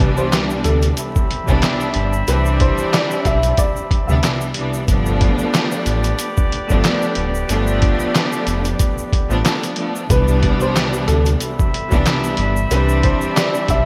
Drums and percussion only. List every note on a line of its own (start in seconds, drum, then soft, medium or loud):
0.00 kick loud
0.17 shaker soft
0.32 snare loud
0.32 clap medium
0.32 closed hi-hat medium
0.32 shaker medium
0.50 shaker medium
0.64 closed hi-hat medium
0.64 shaker medium
0.82 closed hi-hat medium
0.82 shaker medium
0.97 closed hi-hat loud
0.97 shaker medium
1.16 kick loud
1.16 shaker medium
1.31 closed hi-hat medium
1.48 kick medium
1.48 shaker medium
1.62 snare loud
1.62 clap loud
1.62 closed hi-hat medium
1.62 shaker medium
1.81 shaker medium
1.94 closed hi-hat medium
2.13 shaker medium
2.28 closed hi-hat medium
2.28 shaker medium
2.45 shaker medium
2.60 kick loud
2.60 closed hi-hat medium
2.78 shaker medium
2.93 snare loud
2.93 clap medium
2.93 closed hi-hat medium
2.93 shaker medium
3.11 shaker medium
3.25 kick medium
3.25 closed hi-hat medium
3.25 shaker medium
3.43 closed hi-hat medium
3.43 shaker medium
3.57 kick loud
3.57 closed hi-hat loud
3.57 shaker medium
3.76 shaker medium
3.91 kick loud
3.91 closed hi-hat medium
4.09 shaker medium
4.23 snare loud
4.23 clap loud
4.23 closed hi-hat medium
4.23 shaker medium
4.41 shaker medium
4.54 closed hi-hat medium
4.74 shaker medium
4.88 kick loud
4.88 closed hi-hat medium
4.88 shaker medium
5.06 shaker medium
5.21 kick loud
5.21 closed hi-hat medium
5.38 shaker medium
5.54 snare loud
5.54 clap medium
5.54 closed hi-hat medium
5.54 shaker medium
5.72 shaker medium
5.86 closed hi-hat medium
5.86 shaker medium
6.04 closed hi-hat medium
6.04 shaker soft
6.19 closed hi-hat loud
6.19 shaker medium
6.37 kick loud
6.37 shaker medium
6.52 closed hi-hat medium
6.70 kick medium
6.70 shaker medium
6.84 snare loud
6.84 clap loud
6.84 closed hi-hat medium
6.84 shaker medium
7.02 shaker medium
7.15 closed hi-hat medium
7.35 shaker medium
7.49 closed hi-hat medium
7.49 shaker medium
7.67 shaker medium
7.82 kick loud
7.82 closed hi-hat medium
8.00 shaker medium
8.15 snare loud
8.15 clap medium
8.15 closed hi-hat medium
8.15 shaker medium
8.33 shaker medium
8.47 closed hi-hat medium
8.47 shaker medium
8.65 closed hi-hat medium
8.65 shaker soft
8.79 kick loud
8.79 closed hi-hat medium
8.79 shaker medium
8.98 shaker medium
9.13 kick loud
9.13 closed hi-hat medium
9.30 shaker medium
9.45 snare loud
9.45 clap medium
9.45 closed hi-hat medium
9.45 shaker medium
9.63 closed hi-hat medium
9.63 shaker medium
9.76 closed hi-hat medium
9.96 shaker medium
10.10 kick loud
10.10 closed hi-hat medium
10.10 shaker medium
10.28 shaker medium
10.43 kick loud
10.43 closed hi-hat medium
10.61 shaker medium
10.76 snare loud
10.76 clap medium
10.76 closed hi-hat medium
10.76 shaker medium
10.94 shaker medium
11.08 closed hi-hat medium
11.08 shaker medium
11.26 closed hi-hat medium
11.26 shaker medium
11.40 closed hi-hat medium
11.40 shaker medium
11.59 kick loud
11.59 shaker medium
11.74 closed hi-hat medium
11.91 kick medium
11.91 shaker medium
12.06 snare loud
12.06 clap loud
12.06 closed hi-hat medium
12.06 shaker medium
12.24 shaker medium
12.37 closed hi-hat medium
12.57 shaker medium
12.71 closed hi-hat medium
12.71 shaker medium
12.89 shaker medium
13.03 kick loud
13.03 closed hi-hat medium
13.21 shaker medium
13.37 snare loud
13.37 clap medium
13.37 closed hi-hat medium
13.37 shaker medium
13.54 shaker medium
13.68 kick medium
13.68 closed hi-hat medium
13.68 shaker medium